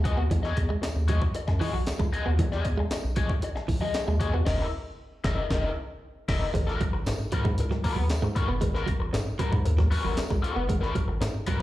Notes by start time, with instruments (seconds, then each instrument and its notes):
0.04 analog synth bass C#2, overdriven electric guitar F#4 G#4 D#5, muted clean electric guitar stroke, kick, closed hi-hat
0.17 analog synth bass D#2, clean electric guitar B3, muted overdriven electric guitar stroke
0.31 analog synth bass E2, clean electric guitar E3, muted overdriven electric guitar stroke, kick, closed hi-hat
0.43 overdriven electric guitar F#4 G#4 D#5, snare
0.57 analog synth bass E2, muted overdriven electric guitar stroke, muted clean electric guitar stroke, kick, closed hi-hat
0.69 clean electric guitar G#3, muted overdriven electric guitar stroke
0.82 analog synth bass D#2, muted overdriven electric guitar stroke, snare, closed hi-hat, tambourine
0.96 analog synth bass D#2
1.08 clean electric guitar F#3, overdriven electric guitar F#4 G#4 D#5, kick, closed hi-hat
1.21 muted overdriven electric guitar stroke, kick
1.35 muted overdriven electric guitar stroke, muted clean electric guitar stroke, closed hi-hat
1.48 analog synth bass F#2, muted overdriven electric guitar stroke, kick, snare
1.60 clean electric guitar E3, overdriven electric guitar F#4 G#4 D#5, open hi-hat
1.73 analog synth bass B1, clean electric guitar F#3, muted overdriven electric guitar stroke
1.87 analog synth bass C#2, snare, closed hi-hat, tambourine
1.99 analog synth bass C#2, clean electric guitar G#3, muted overdriven electric guitar stroke, kick
2.13 overdriven electric guitar F#4 G#4 D#5, muted clean electric guitar stroke, closed hi-hat
2.26 analog synth bass D#2, clean electric guitar B3, muted overdriven electric guitar stroke
2.39 analog synth bass E2, clean electric guitar E3, muted overdriven electric guitar stroke, kick, closed hi-hat
2.52 overdriven electric guitar F#4 G#4 D#5, snare
2.65 analog synth bass E2, muted overdriven electric guitar stroke, muted clean electric guitar stroke, kick, closed hi-hat
2.77 clean electric guitar G#3, muted overdriven electric guitar stroke
2.91 analog synth bass B1, muted overdriven electric guitar stroke, snare, closed hi-hat, tambourine
3.05 analog synth bass B1
3.16 clean electric guitar F#3, overdriven electric guitar F#4 G#4 D#5, kick, closed hi-hat
3.29 muted overdriven electric guitar stroke, kick
3.42 muted clean electric guitar stroke, muted overdriven electric guitar stroke, closed hi-hat
3.55 analog synth bass B1, muted overdriven electric guitar stroke, snare
3.68 analog synth bass B1, clean electric guitar E3, kick, open hi-hat
3.81 clean electric guitar F#3, overdriven electric guitar F#4 G#4 D#5
3.94 snare, closed hi-hat, tambourine
4.08 analog synth bass D#2, clean electric guitar G#3, muted overdriven electric guitar stroke
4.20 analog synth bass D#2, overdriven electric guitar F#4 G#4 D#5, muted clean electric guitar stroke, kick, closed hi-hat
4.34 analog synth bass E2, clean electric guitar B3, muted overdriven electric guitar stroke
4.46 analog synth bass F#1, overdriven electric guitar E4 A#4 D#5, kick, snare, crash
5.24 analog synth bass F#1, overdriven electric guitar E4 A#4 D#5, kick, snare
5.50 analog synth bass F#1, overdriven electric guitar E4 A#4 D#5, kick, snare
6.28 analog synth bass F#1, overdriven electric guitar E4 A#4 D#5, kick, snare, crash
6.54 analog synth bass G#1, clean electric guitar G#3, muted overdriven electric guitar stroke, kick, closed hi-hat
6.67 overdriven electric guitar B3 F#4 A#4, muted clean electric guitar stroke, snare
6.81 clean electric guitar F#3, muted overdriven electric guitar stroke, kick, closed hi-hat
6.93 analog synth bass G#1, muted overdriven electric guitar stroke
7.06 analog synth bass G#2, muted clean electric guitar stroke, muted overdriven electric guitar stroke, snare, closed hi-hat, tambourine
7.32 analog synth bass G#2, clean electric guitar F#3, overdriven electric guitar B3 F#4 A#4, kick, closed hi-hat
7.45 analog synth bass G#2, clean electric guitar G#3, muted overdriven electric guitar stroke, kick
7.58 analog synth bass C#2, muted overdriven electric guitar stroke, closed hi-hat
7.71 clean electric guitar F#3, muted overdriven electric guitar stroke, snare
7.84 overdriven electric guitar B3 F#4 A#4, muted clean electric guitar stroke, kick, open hi-hat
7.96 analog synth bass D#2, clean electric guitar F#3, muted overdriven electric guitar stroke
8.10 snare, closed hi-hat, tambourine
8.22 analog synth bass G#2, clean electric guitar G#3, muted overdriven electric guitar stroke
8.35 overdriven electric guitar B3 F#4 A#4, muted clean electric guitar stroke, kick, closed hi-hat
8.48 analog synth bass F#1, clean electric guitar B3, muted overdriven electric guitar stroke
8.61 analog synth bass G#1, clean electric guitar G#3, muted overdriven electric guitar stroke, kick, closed hi-hat
8.74 overdriven electric guitar B3 F#4 A#4, muted clean electric guitar stroke, snare
8.87 clean electric guitar F#3, muted overdriven electric guitar stroke, kick, closed hi-hat
9.00 analog synth bass G#1, muted overdriven electric guitar stroke
9.13 analog synth bass G#2, muted clean electric guitar stroke, muted overdriven electric guitar stroke, snare, closed hi-hat, tambourine
9.39 analog synth bass G#2, clean electric guitar F#3, overdriven electric guitar B3 F#4 A#4, kick, closed hi-hat
9.52 analog synth bass G#2, clean electric guitar G#3, muted overdriven electric guitar stroke, kick
9.65 analog synth bass D#2, muted overdriven electric guitar stroke, closed hi-hat
9.78 clean electric guitar F#3, muted overdriven electric guitar stroke, kick, snare
9.91 overdriven electric guitar B3 F#4 A#4, muted clean electric guitar stroke, open hi-hat
10.04 analog synth bass G#1, clean electric guitar F#3, overdriven electric guitar B3 F#4 A#4
10.17 analog synth bass B1, snare, closed hi-hat, tambourine
10.30 analog synth bass B1, clean electric guitar G#3, muted overdriven electric guitar stroke, kick
10.42 overdriven electric guitar B3 F#4 A#4, muted clean electric guitar stroke, closed hi-hat
10.56 analog synth bass F#1, clean electric guitar B3, muted overdriven electric guitar stroke
10.68 analog synth bass G#1, clean electric guitar G#3, muted overdriven electric guitar stroke, kick, closed hi-hat
10.81 overdriven electric guitar B3 F#4 A#4, muted clean electric guitar stroke, snare
10.94 clean electric guitar F#3, muted overdriven electric guitar stroke, kick, closed hi-hat
11.08 analog synth bass G#1, muted overdriven electric guitar stroke
11.21 analog synth bass G#2, muted overdriven electric guitar stroke, muted clean electric guitar stroke, snare, closed hi-hat, tambourine
11.46 analog synth bass G#2, clean electric guitar F#3, overdriven electric guitar B3 F#4 A#4, kick, closed hi-hat